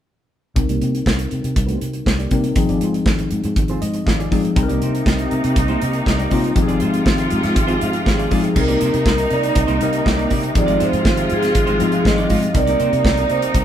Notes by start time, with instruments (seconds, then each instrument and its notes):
0.56 fingered electric bass C2, tine electric piano G3 C4 D#4 A#4, muted clean electric guitar stroke, kick, closed hi-hat
0.69 fingered electric bass C2, clean electric guitar A#3 D#4 G4 D5, closed hi-hat
0.81 fingered electric bass C3, clean electric guitar A#3 D#4 G4 C5, closed hi-hat
0.93 muted clean electric guitar stroke, closed hi-hat
1.05 fingered electric bass C2, muted clean electric guitar stroke, kick, snare
1.18 muted clean electric guitar stroke, closed hi-hat
1.31 fingered electric bass C3, closed hi-hat
1.42 fingered electric bass C3, muted clean electric guitar stroke, closed hi-hat
1.55 fingered electric bass C2, muted clean electric guitar stroke, kick, closed hi-hat
1.66 clean electric guitar A#3 D#4 G4 C5, closed hi-hat
1.81 fingered electric bass C3, muted clean electric guitar stroke, closed hi-hat
1.93 muted clean electric guitar stroke, closed hi-hat
2.06 fingered electric bass C2, muted clean electric guitar stroke, kick, snare
2.19 clean electric guitar A#3 D#4 G4 D5, closed hi-hat
2.31 fingered electric bass C3, tine electric piano G3 C4 D#4 A#4, clean electric guitar A#3 D#4 G4 D5, kick, closed hi-hat
2.44 muted clean electric guitar stroke, closed hi-hat
2.56 fingered electric bass G#1, tine electric piano F3 C4 D#4 G#4, muted clean electric guitar stroke, kick, closed hi-hat
2.69 fingered electric bass G#1, clean electric guitar C4 F4 G#4 D5, closed hi-hat
2.81 fingered electric bass G#2, clean electric guitar C4 F4 G#4 C5, closed hi-hat
2.94 muted clean electric guitar stroke, closed hi-hat
3.06 fingered electric bass G#1, muted clean electric guitar stroke, kick, snare
3.19 muted clean electric guitar stroke, closed hi-hat
3.31 fingered electric bass G#2, closed hi-hat
3.44 fingered electric bass G#2, muted clean electric guitar stroke, closed hi-hat
3.56 fingered electric bass G#1, muted clean electric guitar stroke, kick, closed hi-hat
3.68 clean electric guitar C4 F4 G#4 C5, closed hi-hat
3.82 fingered electric bass G#2, tine electric piano D#5, muted clean electric guitar stroke, closed hi-hat
3.93 muted clean electric guitar stroke, closed hi-hat
4.06 fingered electric bass G#1, tine electric piano F5, muted clean electric guitar stroke, kick, snare
4.19 clean electric guitar C4 F4 G#4 D5, closed hi-hat
4.31 fingered electric bass G#2, tine electric piano F3 C4 D#4 G#4, clean electric guitar C4 F4 G#4 D5, kick, open hi-hat
4.44 muted clean electric guitar stroke, closed hi-hat
4.55 fingered electric bass C2, string section C3 A#3 D#4, tine electric piano G3 C4 D#4 G#4, muted clean electric guitar stroke, kick, closed hi-hat
4.63 tine electric piano A#4
4.69 fingered electric bass C2, clean electric guitar A#3 D#4 G4 D5, closed hi-hat
4.81 fingered electric bass C3, clean electric guitar A#3 D#4 G4 C5, closed hi-hat
4.94 muted clean electric guitar stroke, closed hi-hat
5.06 fingered electric bass C2, muted clean electric guitar stroke, kick, snare
5.19 muted clean electric guitar stroke, closed hi-hat
5.31 fingered electric bass C3, closed hi-hat
5.44 fingered electric bass C3, muted clean electric guitar stroke, closed hi-hat
5.56 fingered electric bass C2, muted clean electric guitar stroke, kick, closed hi-hat
5.68 clean electric guitar A#3 D#4 G4 C5, closed hi-hat
5.81 fingered electric bass C3, muted clean electric guitar stroke, closed hi-hat
5.93 muted clean electric guitar stroke, closed hi-hat
6.06 fingered electric bass C2, muted clean electric guitar stroke, kick, snare
6.18 clean electric guitar A#3 D#4 G4 D5, closed hi-hat
6.31 fingered electric bass C3, tine electric piano G3 C4 D#4 F4, clean electric guitar A#3 D#4 G4 D5, kick, open hi-hat
6.43 muted clean electric guitar stroke, closed hi-hat
6.55 fingered electric bass G#1, string section C3 G#3 F4, tine electric piano F3 C4 D#4 G4, muted clean electric guitar stroke, kick, closed hi-hat
6.62 tine electric piano G#4
6.68 fingered electric bass G#1, clean electric guitar C4 F4 G#4 D5, closed hi-hat
6.80 fingered electric bass G#2, clean electric guitar C4 F4 G#4 C5, closed hi-hat
6.93 muted clean electric guitar stroke, closed hi-hat
7.05 fingered electric bass G#1, muted clean electric guitar stroke, kick, snare
7.18 muted clean electric guitar stroke, closed hi-hat
7.30 fingered electric bass G#2, closed hi-hat
7.43 fingered electric bass G#2, muted clean electric guitar stroke, snare, closed hi-hat
7.55 fingered electric bass G#1, muted clean electric guitar stroke, kick, closed hi-hat
7.67 clean electric guitar C4 F4 G#4 C5, closed hi-hat
7.81 fingered electric bass G#2, muted clean electric guitar stroke, closed hi-hat
7.93 muted clean electric guitar stroke, closed hi-hat
8.06 fingered electric bass G#1, vibraphone G#4, muted clean electric guitar stroke, kick, snare
8.18 clean electric guitar C4 F4 G#4 D5, closed hi-hat
8.31 fingered electric bass G#2, tine electric piano F3 C4 D#4 G#4, clean electric guitar C4 F4 G#4 D5, kick, open hi-hat
8.43 muted clean electric guitar stroke, closed hi-hat
8.55 fingered electric bass C2, string section C3 A#3 D#4, tine electric piano G3 C4 D#4 A#4, vibraphone A#4, muted clean electric guitar stroke, kick, crash
8.68 clean electric guitar A#3 D#4 G4 D5, closed hi-hat
8.80 fingered electric bass C3, clean electric guitar A#3 D#4 G4 C5, closed hi-hat
8.93 fingered electric bass C3, muted clean electric guitar stroke, closed hi-hat
9.06 fingered electric bass C2, muted clean electric guitar stroke, kick, snare
9.17 muted clean electric guitar stroke, closed hi-hat
9.31 fingered electric bass C3, vibraphone D5, closed hi-hat
9.43 muted clean electric guitar stroke, closed hi-hat
9.55 fingered electric bass C2, vibraphone D#5, muted clean electric guitar stroke, kick, closed hi-hat
9.67 fingered electric bass C2, clean electric guitar A#3 D#4 G4 C5, closed hi-hat
9.81 fingered electric bass C3, tine electric piano G3 C4 D#4 A#4, muted clean electric guitar stroke, closed hi-hat
9.93 muted clean electric guitar stroke, closed hi-hat
10.05 fingered electric bass C2, muted clean electric guitar stroke, kick, snare
10.18 clean electric guitar A#3 D#4 G4 D5, closed hi-hat
10.30 fingered electric bass C3, clean electric guitar A#3 D#4 G4 D5, kick, open hi-hat
10.43 muted clean electric guitar stroke, closed hi-hat
10.55 fingered electric bass G#1, tine electric piano F3 C4 D#4 G#4, string section G#3 F4, vibraphone D5, muted clean electric guitar stroke, kick, closed hi-hat
10.67 clean electric guitar G#3 D#4 F4 D5, closed hi-hat
10.79 fingered electric bass G#2, clean electric guitar G#3 D#4 F4 C5, closed hi-hat
10.83 vibraphone C5
10.92 fingered electric bass G#2, muted clean electric guitar stroke, closed hi-hat
11.05 fingered electric bass G#1, muted clean electric guitar stroke, kick, snare
11.16 muted clean electric guitar stroke, closed hi-hat
11.30 fingered electric bass G#2, vibraphone G#4, closed hi-hat
11.42 muted clean electric guitar stroke, snare, closed hi-hat
11.54 fingered electric bass G#1, muted clean electric guitar stroke, kick, closed hi-hat
11.66 fingered electric bass G#1, clean electric guitar G#3 D#4 F4 C5, closed hi-hat
11.79 fingered electric bass G#2, tine electric piano F3 C4 D#4 G#4, muted clean electric guitar stroke, closed hi-hat
11.92 muted clean electric guitar stroke, closed hi-hat
12.05 fingered electric bass G#1, vibraphone D#5, muted clean electric guitar stroke, kick, snare
12.18 clean electric guitar G#3 D#4 F4 D5, closed hi-hat
12.30 fingered electric bass G#2, clean electric guitar G#3 D#4 F4 D5, kick, open hi-hat
12.43 muted clean electric guitar stroke, closed hi-hat
12.54 fingered electric bass C2, string section C3 A#3 D#4, tine electric piano G3 C4 D#4 A#4, vibraphone D5, muted clean electric guitar stroke, kick, closed hi-hat
12.67 clean electric guitar A#3 D#4 G4 D5, closed hi-hat
12.79 fingered electric bass C3, clean electric guitar A#3 D#4 G4 C5, closed hi-hat
12.93 fingered electric bass C3, muted clean electric guitar stroke, closed hi-hat
13.05 fingered electric bass C2, muted clean electric guitar stroke, kick, snare
13.17 muted clean electric guitar stroke, closed hi-hat
13.22 vibraphone D5
13.30 fingered electric bass C3, vibraphone C5, closed hi-hat
13.42 muted clean electric guitar stroke, closed hi-hat
13.54 fingered electric bass C2, muted clean electric guitar stroke, kick, closed hi-hat